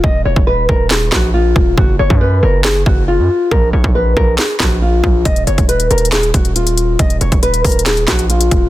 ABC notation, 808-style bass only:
X:1
M:4/4
L:1/16
Q:1/4=138
K:Ebm
V:1 name="808-style bass" clef=bass
E,,,2 E,,, E,,,3 E,,,4 B,,,4 E,,,2 | G,,,2 G,,, G,,3 G,,,4 G,,,3 G,, z2 | B,,,2 B,,, B,,,3 B,,,2 z2 B,,,4 B,,,2 | E,,,2 G,,, E,,,3 E,,,4 E,,,6 |
E,,,2 E,,, E,,,3 E,,,4 B,,,4 E,,,2 |]